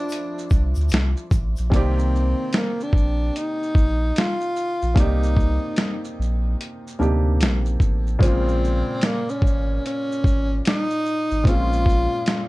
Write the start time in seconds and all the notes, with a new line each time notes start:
Already playing: F3 A3 C4 D4 E4 E5 C6 D6
0.09 closed hi-hat, shaker
0.12 shaker
0.38 shaker
0.50 C2, kick, shaker
0.53 shaker
0.75 D2, shaker
0.80 shaker
0.89 closed hi-hat, shaker
0.92 C2, snare, shaker
1.17 shaker
1.31 A1, kick, shaker
1.56 A#1, shaker
1.70 C2 C3 A#3 D5, kick, closed hi-hat, shaker
1.75 D#3 C4 G4
1.99 shaker
2.16 shaker
2.53 snare, closed hi-hat, shaker
2.57 A#3
2.80 D4, shaker
2.93 A#1, kick
2.97 shaker
3.36 D#4, closed hi-hat, shaker
3.63 shaker
3.75 A#1, kick, shaker
4.16 F4, snare, closed hi-hat, shaker
4.41 shaker
4.56 shaker
4.82 A#1, shaker
4.94 C2 C3 A#3 D5, kick, closed hi-hat, shaker
4.98 D#4 G4
5.23 shaker
5.37 kick, shaker
5.76 snare, closed hi-hat, shaker
6.04 shaker
6.19 A#1, shaker
6.61 closed hi-hat, shaker
6.87 shaker
6.99 D2 C3 A#3 D4 D#4 G4, shaker
7.41 A#1, snare, closed hi-hat, shaker
7.66 shaker
7.80 A1, kick, shaker
8.07 shaker
8.19 A#1 A#2 G#3 C5, kick, closed hi-hat, shaker
8.23 C#3 C4 F4
8.48 shaker
8.65 shaker
9.01 A#3, snare, closed hi-hat, shaker
9.29 C#4, shaker
9.42 G#1, kick
9.47 shaker
9.86 C#4, closed hi-hat, shaker
10.12 shaker
10.24 G#1, kick, shaker
10.65 D#4, snare, closed hi-hat, shaker
10.90 shaker
11.06 shaker
11.31 G#1, shaker
11.44 A#1 A#2 G#3 C4, kick, closed hi-hat, shaker
11.48 C#4 F4
11.73 shaker
11.86 kick, shaker
12.26 snare, closed hi-hat, shaker